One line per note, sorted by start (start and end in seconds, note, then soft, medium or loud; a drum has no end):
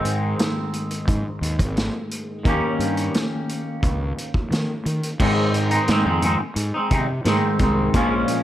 0.00 2.43 G#2 medium
0.00 2.43 D#3 medium
0.00 2.44 G#3 medium
0.00 2.44 C4 medium
0.00 2.48 D#4 medium
0.05 0.33 G#2 medium
0.05 closed hi-hat medium
0.39 snare loud
0.39 closed hi-hat medium
0.73 closed hi-hat medium
0.91 closed hi-hat medium
1.08 1.22 G#2 medium
1.08 kick loud
1.08 closed hi-hat medium
1.41 1.61 D#2 medium
1.41 closed hi-hat medium
1.59 1.88 G#1 medium
1.59 kick medium
1.59 closed hi-hat medium
1.77 snare loud
1.77 closed hi-hat medium
2.11 closed hi-hat medium
2.44 2.60 D#2 loud
2.44 5.17 D#3 medium
2.44 5.18 A#3 medium
2.44 5.19 C#4 medium
2.44 kick loud
2.44 closed hi-hat medium
2.48 5.20 G4 loud
2.79 3.08 G2 medium
2.79 closed hi-hat medium
2.97 closed hi-hat medium
3.14 snare loud
3.14 closed hi-hat medium
3.49 closed hi-hat medium
3.83 4.12 C#2 medium
3.83 kick loud
3.83 closed hi-hat medium
4.18 closed hi-hat medium
4.34 kick medium
4.51 4.65 D#3 medium
4.51 snare loud
4.51 closed hi-hat medium
4.86 5.00 D#3 medium
4.86 closed hi-hat medium
5.03 closed hi-hat medium
5.20 5.87 G#2 medium
5.20 5.78 G#2 medium
5.20 5.88 D#3 medium
5.20 5.74 G#3 medium
5.20 5.72 C4 medium
5.20 5.70 D#4 loud
5.20 kick loud
5.20 crash loud
5.54 closed hi-hat medium
5.71 5.90 G#3 medium
5.71 5.90 C4 medium
5.71 5.91 D#4 medium
5.71 closed hi-hat medium
5.88 6.03 G#2 medium
5.88 6.40 G#2 medium
5.88 6.21 D#3 medium
5.88 6.09 G#3 loud
5.88 6.07 C4 medium
5.88 snare loud
5.88 closed hi-hat medium
5.92 6.04 D#4 medium
6.05 6.34 F2 medium
6.05 6.23 G#3 medium
6.05 6.23 C4 medium
6.05 6.25 D#4 medium
6.22 6.40 D#3 medium
6.22 6.40 G#3 medium
6.22 6.39 C4 medium
6.22 6.39 D#4 medium
6.22 closed hi-hat medium
6.40 muted clean electric guitar stroke medium
6.56 6.71 G#2 medium
6.56 closed hi-hat medium
6.74 6.91 G#3 medium
6.74 6.92 C4 medium
6.74 6.93 D#4 medium
6.91 7.20 C3 medium
6.91 7.08 D#3 medium
6.91 7.08 G#3 medium
6.91 7.08 C4 medium
6.91 7.07 D#4 medium
6.91 kick medium
6.91 closed hi-hat medium
7.09 muted clean electric guitar stroke soft
7.25 7.92 G#2 medium
7.25 7.40 G#2 medium
7.25 7.59 D#3 medium
7.25 7.60 G#3 medium
7.25 7.61 C4 medium
7.25 7.62 D#4 medium
7.25 snare loud
7.25 closed hi-hat medium
7.59 7.89 C2 medium
7.59 7.92 D#3 medium
7.59 7.93 G#3 medium
7.59 7.94 C4 medium
7.59 kick medium
7.59 closed hi-hat medium
7.63 7.94 D#4 medium
7.94 8.23 A#1 loud
7.94 8.43 A#2 medium
7.94 8.43 F3 medium
7.94 8.43 G#3 medium
7.94 8.43 C#4 medium
7.94 8.43 F4 medium
7.94 kick loud
7.94 closed hi-hat medium
8.28 closed hi-hat medium